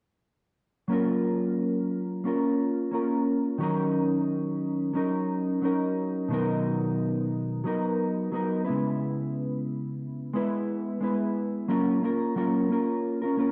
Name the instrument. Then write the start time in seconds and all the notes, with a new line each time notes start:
clean electric guitar
0.88 F#3 A#3 C#4 F4
0.93 A#4
2.24 A#3 C#4 F4 A#4
2.91 A#3 C#4 F4 A#4
3.58 D#3 F#3 C#4
3.62 D#4 A#4
4.94 F#3 C#4 D#4 A#4
5.62 F#3 C#4 D#4 A#4
6.29 B2 D#3 F#3 B3
6.33 D#4 A#4
7.64 F#3 B3 D#4 A#4
8.32 F#3 B3 D#4 A#4
8.65 B3 E4 B4
8.69 C#3 G#3
10.33 G#3 B3 E4 B4
11.01 G#3 B3 E4 B4
11.68 F#3 A#3 C#4 F4 A#4
12.02 A#3 C#4 F4 A#4
12.36 F#3 A#3 C#4 F4 A#4
12.69 A#3 C#4 F4 A#4
13.22 C#4 F4 A#4
13.37 A#3 C#4 F4 A#4